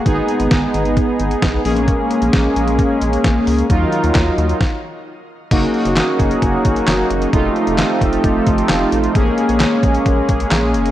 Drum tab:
CC |----------------|----------------|----------------|x---------------|
HH |x-xxx-xxx-xxx-ox|x-xxx-xxx-xxx-ox|x-xxx-xx--------|x-xxx-xxx-xxx-xx|
CP |----------------|----------------|----x-----------|----x-------x---|
SD |----o-------o---|----o-------o---|----o---o-------|----o-------o---|
BD |o---o---o---o---|o---o---o---o---|o---o---o-------|o-----o-o-o-----|

CC |----------------|----------------|
HH |x-xxx-xxx-xxx-xx|x-xxx-xxx-xxx-xx|
CP |----x-------x---|----x-------x---|
SD |----o-------o---|----o-------o---|
BD |o-----o-o-o-----|o-----o-o-o-----|